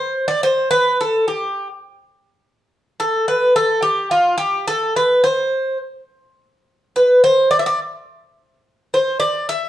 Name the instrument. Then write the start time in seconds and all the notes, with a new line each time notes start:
bouzouki
Already playing: C5
0.28 D5
0.43 C5
0.71 B4
1.01 A4
1.28 G4
3.00 A4
3.28 B4
3.56 A4
3.82 G4
4.11 F4
4.38 G4
4.68 A4
4.96 B4
5.24 C5
6.96 B4
7.24 C5
7.51 D5
7.59 E5
7.66 D5
8.94 C5
9.20 D5
9.49 E5